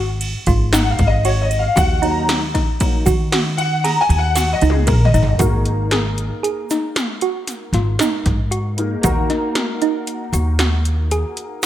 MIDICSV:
0, 0, Header, 1, 5, 480
1, 0, Start_track
1, 0, Tempo, 519031
1, 1637, Time_signature, 7, 2, 24, 8
1, 10782, End_track
2, 0, Start_track
2, 0, Title_t, "Grand piano"
2, 0, Program_c, 0, 0
2, 670, Note_on_c, 0, 78, 91
2, 822, Note_off_c, 0, 78, 0
2, 838, Note_on_c, 0, 77, 92
2, 989, Note_on_c, 0, 75, 95
2, 1002, Note_off_c, 0, 77, 0
2, 1153, Note_on_c, 0, 73, 86
2, 1158, Note_off_c, 0, 75, 0
2, 1310, Note_on_c, 0, 75, 87
2, 1320, Note_off_c, 0, 73, 0
2, 1469, Note_on_c, 0, 77, 91
2, 1478, Note_off_c, 0, 75, 0
2, 1628, Note_on_c, 0, 78, 109
2, 1638, Note_off_c, 0, 77, 0
2, 1877, Note_on_c, 0, 54, 58
2, 1883, Note_on_c, 0, 58, 53
2, 1888, Note_on_c, 0, 63, 64
2, 1929, Note_off_c, 0, 78, 0
2, 1951, Note_on_c, 0, 82, 92
2, 2176, Note_off_c, 0, 82, 0
2, 2195, Note_off_c, 0, 54, 0
2, 2199, Note_off_c, 0, 58, 0
2, 2201, Note_off_c, 0, 63, 0
2, 2587, Note_on_c, 0, 54, 49
2, 2593, Note_on_c, 0, 58, 47
2, 2595, Note_on_c, 0, 63, 51
2, 2807, Note_off_c, 0, 54, 0
2, 2810, Note_off_c, 0, 58, 0
2, 2811, Note_off_c, 0, 63, 0
2, 3305, Note_on_c, 0, 78, 114
2, 3533, Note_off_c, 0, 78, 0
2, 3551, Note_on_c, 0, 82, 101
2, 3706, Note_on_c, 0, 80, 110
2, 3717, Note_off_c, 0, 82, 0
2, 3868, Note_on_c, 0, 78, 104
2, 3875, Note_off_c, 0, 80, 0
2, 4188, Note_on_c, 0, 75, 97
2, 4201, Note_off_c, 0, 78, 0
2, 4336, Note_on_c, 0, 68, 96
2, 4356, Note_off_c, 0, 75, 0
2, 4500, Note_on_c, 0, 70, 84
2, 4510, Note_off_c, 0, 68, 0
2, 4655, Note_off_c, 0, 70, 0
2, 4669, Note_on_c, 0, 75, 85
2, 4969, Note_off_c, 0, 75, 0
2, 4973, Note_on_c, 0, 58, 59
2, 4985, Note_on_c, 0, 63, 55
2, 4994, Note_on_c, 0, 68, 52
2, 5004, Note_on_c, 0, 70, 62
2, 8069, Note_off_c, 0, 58, 0
2, 8076, Note_off_c, 0, 63, 0
2, 8080, Note_off_c, 0, 68, 0
2, 8085, Note_off_c, 0, 70, 0
2, 8110, Note_on_c, 0, 58, 54
2, 8117, Note_on_c, 0, 63, 51
2, 8126, Note_on_c, 0, 68, 49
2, 8128, Note_on_c, 0, 70, 58
2, 8322, Note_off_c, 0, 58, 0
2, 8336, Note_on_c, 0, 58, 74
2, 8338, Note_off_c, 0, 63, 0
2, 8352, Note_on_c, 0, 63, 70
2, 8358, Note_off_c, 0, 70, 0
2, 8359, Note_on_c, 0, 66, 72
2, 8361, Note_off_c, 0, 68, 0
2, 8372, Note_on_c, 0, 70, 83
2, 10782, Note_off_c, 0, 58, 0
2, 10782, Note_off_c, 0, 63, 0
2, 10782, Note_off_c, 0, 66, 0
2, 10782, Note_off_c, 0, 70, 0
2, 10782, End_track
3, 0, Start_track
3, 0, Title_t, "Synth arpeggio sound"
3, 0, Program_c, 1, 84
3, 0, Note_on_c, 1, 66, 84
3, 365, Note_off_c, 1, 66, 0
3, 436, Note_on_c, 1, 65, 79
3, 642, Note_off_c, 1, 65, 0
3, 674, Note_on_c, 1, 63, 84
3, 1086, Note_off_c, 1, 63, 0
3, 1157, Note_on_c, 1, 66, 89
3, 1568, Note_off_c, 1, 66, 0
3, 1626, Note_on_c, 1, 66, 99
3, 1836, Note_off_c, 1, 66, 0
3, 1870, Note_on_c, 1, 63, 87
3, 2283, Note_off_c, 1, 63, 0
3, 2353, Note_on_c, 1, 63, 85
3, 2764, Note_off_c, 1, 63, 0
3, 2829, Note_on_c, 1, 66, 78
3, 3037, Note_off_c, 1, 66, 0
3, 3073, Note_on_c, 1, 66, 88
3, 3484, Note_off_c, 1, 66, 0
3, 3553, Note_on_c, 1, 68, 90
3, 3964, Note_off_c, 1, 68, 0
3, 4031, Note_on_c, 1, 66, 93
3, 4238, Note_off_c, 1, 66, 0
3, 4275, Note_on_c, 1, 63, 83
3, 4685, Note_off_c, 1, 63, 0
3, 4754, Note_on_c, 1, 63, 88
3, 4959, Note_off_c, 1, 63, 0
3, 4988, Note_on_c, 1, 66, 88
3, 5401, Note_off_c, 1, 66, 0
3, 5471, Note_on_c, 1, 68, 81
3, 5883, Note_off_c, 1, 68, 0
3, 5949, Note_on_c, 1, 68, 78
3, 6157, Note_off_c, 1, 68, 0
3, 6204, Note_on_c, 1, 63, 75
3, 6611, Note_off_c, 1, 63, 0
3, 6679, Note_on_c, 1, 66, 77
3, 7089, Note_off_c, 1, 66, 0
3, 7160, Note_on_c, 1, 65, 81
3, 7364, Note_off_c, 1, 65, 0
3, 7403, Note_on_c, 1, 63, 82
3, 7812, Note_off_c, 1, 63, 0
3, 7873, Note_on_c, 1, 66, 80
3, 8285, Note_off_c, 1, 66, 0
3, 8361, Note_on_c, 1, 66, 88
3, 8565, Note_off_c, 1, 66, 0
3, 8599, Note_on_c, 1, 63, 83
3, 9010, Note_off_c, 1, 63, 0
3, 9081, Note_on_c, 1, 63, 81
3, 9491, Note_off_c, 1, 63, 0
3, 9558, Note_on_c, 1, 66, 78
3, 9764, Note_off_c, 1, 66, 0
3, 9802, Note_on_c, 1, 66, 85
3, 10212, Note_off_c, 1, 66, 0
3, 10280, Note_on_c, 1, 68, 81
3, 10691, Note_off_c, 1, 68, 0
3, 10782, End_track
4, 0, Start_track
4, 0, Title_t, "Upright bass"
4, 0, Program_c, 2, 32
4, 0, Note_on_c, 2, 32, 81
4, 301, Note_off_c, 2, 32, 0
4, 434, Note_on_c, 2, 32, 96
4, 847, Note_off_c, 2, 32, 0
4, 918, Note_on_c, 2, 32, 87
4, 1534, Note_off_c, 2, 32, 0
4, 1634, Note_on_c, 2, 39, 101
4, 2456, Note_off_c, 2, 39, 0
4, 2833, Note_on_c, 2, 51, 84
4, 3655, Note_off_c, 2, 51, 0
4, 3785, Note_on_c, 2, 39, 88
4, 4200, Note_off_c, 2, 39, 0
4, 4272, Note_on_c, 2, 37, 96
4, 4489, Note_off_c, 2, 37, 0
4, 4510, Note_on_c, 2, 34, 89
4, 4728, Note_off_c, 2, 34, 0
4, 4755, Note_on_c, 2, 32, 92
4, 4971, Note_off_c, 2, 32, 0
4, 4992, Note_on_c, 2, 32, 88
4, 5815, Note_off_c, 2, 32, 0
4, 7145, Note_on_c, 2, 32, 80
4, 7355, Note_off_c, 2, 32, 0
4, 7641, Note_on_c, 2, 44, 83
4, 8256, Note_off_c, 2, 44, 0
4, 8360, Note_on_c, 2, 39, 87
4, 8565, Note_off_c, 2, 39, 0
4, 9550, Note_on_c, 2, 39, 89
4, 10377, Note_off_c, 2, 39, 0
4, 10782, End_track
5, 0, Start_track
5, 0, Title_t, "Drums"
5, 193, Note_on_c, 9, 51, 92
5, 285, Note_off_c, 9, 51, 0
5, 430, Note_on_c, 9, 51, 62
5, 435, Note_on_c, 9, 36, 70
5, 443, Note_on_c, 9, 82, 20
5, 523, Note_off_c, 9, 51, 0
5, 527, Note_off_c, 9, 36, 0
5, 535, Note_off_c, 9, 82, 0
5, 672, Note_on_c, 9, 38, 107
5, 672, Note_on_c, 9, 51, 78
5, 682, Note_on_c, 9, 82, 64
5, 764, Note_off_c, 9, 38, 0
5, 764, Note_off_c, 9, 51, 0
5, 775, Note_off_c, 9, 82, 0
5, 913, Note_on_c, 9, 51, 65
5, 917, Note_on_c, 9, 36, 80
5, 1005, Note_off_c, 9, 51, 0
5, 1009, Note_off_c, 9, 36, 0
5, 1154, Note_on_c, 9, 51, 84
5, 1246, Note_off_c, 9, 51, 0
5, 1396, Note_on_c, 9, 51, 64
5, 1401, Note_on_c, 9, 82, 21
5, 1488, Note_off_c, 9, 51, 0
5, 1493, Note_off_c, 9, 82, 0
5, 1636, Note_on_c, 9, 82, 57
5, 1638, Note_on_c, 9, 36, 109
5, 1638, Note_on_c, 9, 51, 80
5, 1728, Note_off_c, 9, 82, 0
5, 1730, Note_off_c, 9, 51, 0
5, 1731, Note_off_c, 9, 36, 0
5, 1875, Note_on_c, 9, 51, 59
5, 1968, Note_off_c, 9, 51, 0
5, 2113, Note_on_c, 9, 82, 20
5, 2117, Note_on_c, 9, 38, 111
5, 2117, Note_on_c, 9, 51, 80
5, 2205, Note_off_c, 9, 82, 0
5, 2210, Note_off_c, 9, 38, 0
5, 2210, Note_off_c, 9, 51, 0
5, 2357, Note_on_c, 9, 36, 74
5, 2357, Note_on_c, 9, 38, 36
5, 2357, Note_on_c, 9, 51, 59
5, 2449, Note_off_c, 9, 36, 0
5, 2450, Note_off_c, 9, 38, 0
5, 2450, Note_off_c, 9, 51, 0
5, 2592, Note_on_c, 9, 51, 91
5, 2596, Note_on_c, 9, 36, 110
5, 2599, Note_on_c, 9, 82, 19
5, 2684, Note_off_c, 9, 51, 0
5, 2689, Note_off_c, 9, 36, 0
5, 2691, Note_off_c, 9, 82, 0
5, 2833, Note_on_c, 9, 51, 66
5, 2835, Note_on_c, 9, 36, 74
5, 2835, Note_on_c, 9, 82, 53
5, 2926, Note_off_c, 9, 51, 0
5, 2927, Note_off_c, 9, 36, 0
5, 2928, Note_off_c, 9, 82, 0
5, 3074, Note_on_c, 9, 38, 113
5, 3074, Note_on_c, 9, 51, 88
5, 3167, Note_off_c, 9, 38, 0
5, 3167, Note_off_c, 9, 51, 0
5, 3315, Note_on_c, 9, 51, 68
5, 3408, Note_off_c, 9, 51, 0
5, 3557, Note_on_c, 9, 38, 35
5, 3557, Note_on_c, 9, 51, 88
5, 3649, Note_off_c, 9, 38, 0
5, 3649, Note_off_c, 9, 51, 0
5, 3793, Note_on_c, 9, 51, 67
5, 3886, Note_off_c, 9, 51, 0
5, 4028, Note_on_c, 9, 38, 64
5, 4028, Note_on_c, 9, 51, 91
5, 4035, Note_on_c, 9, 82, 66
5, 4120, Note_off_c, 9, 38, 0
5, 4120, Note_off_c, 9, 51, 0
5, 4127, Note_off_c, 9, 82, 0
5, 4267, Note_on_c, 9, 51, 68
5, 4282, Note_on_c, 9, 82, 21
5, 4347, Note_on_c, 9, 48, 88
5, 4360, Note_off_c, 9, 51, 0
5, 4374, Note_off_c, 9, 82, 0
5, 4439, Note_off_c, 9, 48, 0
5, 4504, Note_on_c, 9, 47, 81
5, 4504, Note_on_c, 9, 51, 100
5, 4511, Note_on_c, 9, 36, 119
5, 4596, Note_off_c, 9, 47, 0
5, 4596, Note_off_c, 9, 51, 0
5, 4603, Note_off_c, 9, 36, 0
5, 4671, Note_on_c, 9, 45, 105
5, 4755, Note_on_c, 9, 51, 70
5, 4760, Note_on_c, 9, 82, 22
5, 4764, Note_off_c, 9, 45, 0
5, 4833, Note_on_c, 9, 43, 95
5, 4848, Note_off_c, 9, 51, 0
5, 4853, Note_off_c, 9, 82, 0
5, 4925, Note_off_c, 9, 43, 0
5, 4986, Note_on_c, 9, 42, 80
5, 4993, Note_on_c, 9, 36, 101
5, 4998, Note_on_c, 9, 82, 57
5, 5078, Note_off_c, 9, 42, 0
5, 5086, Note_off_c, 9, 36, 0
5, 5090, Note_off_c, 9, 82, 0
5, 5230, Note_on_c, 9, 42, 57
5, 5322, Note_off_c, 9, 42, 0
5, 5468, Note_on_c, 9, 38, 101
5, 5468, Note_on_c, 9, 42, 70
5, 5560, Note_off_c, 9, 38, 0
5, 5560, Note_off_c, 9, 42, 0
5, 5714, Note_on_c, 9, 42, 50
5, 5806, Note_off_c, 9, 42, 0
5, 5959, Note_on_c, 9, 42, 71
5, 6052, Note_off_c, 9, 42, 0
5, 6197, Note_on_c, 9, 82, 48
5, 6203, Note_on_c, 9, 38, 32
5, 6203, Note_on_c, 9, 42, 58
5, 6290, Note_off_c, 9, 82, 0
5, 6295, Note_off_c, 9, 38, 0
5, 6295, Note_off_c, 9, 42, 0
5, 6438, Note_on_c, 9, 38, 106
5, 6438, Note_on_c, 9, 42, 77
5, 6451, Note_on_c, 9, 82, 17
5, 6530, Note_off_c, 9, 38, 0
5, 6530, Note_off_c, 9, 42, 0
5, 6544, Note_off_c, 9, 82, 0
5, 6671, Note_on_c, 9, 42, 65
5, 6764, Note_off_c, 9, 42, 0
5, 6913, Note_on_c, 9, 38, 33
5, 6913, Note_on_c, 9, 42, 85
5, 6932, Note_on_c, 9, 82, 19
5, 7005, Note_off_c, 9, 38, 0
5, 7005, Note_off_c, 9, 42, 0
5, 7024, Note_off_c, 9, 82, 0
5, 7154, Note_on_c, 9, 38, 35
5, 7154, Note_on_c, 9, 42, 60
5, 7246, Note_off_c, 9, 38, 0
5, 7246, Note_off_c, 9, 42, 0
5, 7391, Note_on_c, 9, 38, 109
5, 7391, Note_on_c, 9, 42, 81
5, 7410, Note_on_c, 9, 82, 55
5, 7483, Note_off_c, 9, 38, 0
5, 7483, Note_off_c, 9, 42, 0
5, 7503, Note_off_c, 9, 82, 0
5, 7636, Note_on_c, 9, 38, 32
5, 7636, Note_on_c, 9, 42, 61
5, 7638, Note_on_c, 9, 36, 72
5, 7729, Note_off_c, 9, 38, 0
5, 7729, Note_off_c, 9, 42, 0
5, 7731, Note_off_c, 9, 36, 0
5, 7878, Note_on_c, 9, 42, 82
5, 7970, Note_off_c, 9, 42, 0
5, 8119, Note_on_c, 9, 42, 63
5, 8211, Note_off_c, 9, 42, 0
5, 8354, Note_on_c, 9, 42, 85
5, 8359, Note_on_c, 9, 36, 109
5, 8369, Note_on_c, 9, 82, 58
5, 8446, Note_off_c, 9, 42, 0
5, 8451, Note_off_c, 9, 36, 0
5, 8462, Note_off_c, 9, 82, 0
5, 8600, Note_on_c, 9, 38, 33
5, 8600, Note_on_c, 9, 42, 58
5, 8692, Note_off_c, 9, 38, 0
5, 8692, Note_off_c, 9, 42, 0
5, 8835, Note_on_c, 9, 38, 100
5, 8835, Note_on_c, 9, 42, 75
5, 8927, Note_off_c, 9, 38, 0
5, 8927, Note_off_c, 9, 42, 0
5, 9078, Note_on_c, 9, 42, 56
5, 9170, Note_off_c, 9, 42, 0
5, 9315, Note_on_c, 9, 42, 72
5, 9408, Note_off_c, 9, 42, 0
5, 9557, Note_on_c, 9, 42, 58
5, 9559, Note_on_c, 9, 82, 47
5, 9650, Note_off_c, 9, 42, 0
5, 9652, Note_off_c, 9, 82, 0
5, 9793, Note_on_c, 9, 38, 101
5, 9793, Note_on_c, 9, 42, 72
5, 9800, Note_on_c, 9, 82, 18
5, 9886, Note_off_c, 9, 38, 0
5, 9886, Note_off_c, 9, 42, 0
5, 9893, Note_off_c, 9, 82, 0
5, 10038, Note_on_c, 9, 42, 57
5, 10130, Note_off_c, 9, 42, 0
5, 10278, Note_on_c, 9, 42, 76
5, 10281, Note_on_c, 9, 82, 20
5, 10370, Note_off_c, 9, 42, 0
5, 10374, Note_off_c, 9, 82, 0
5, 10515, Note_on_c, 9, 42, 56
5, 10607, Note_off_c, 9, 42, 0
5, 10782, End_track
0, 0, End_of_file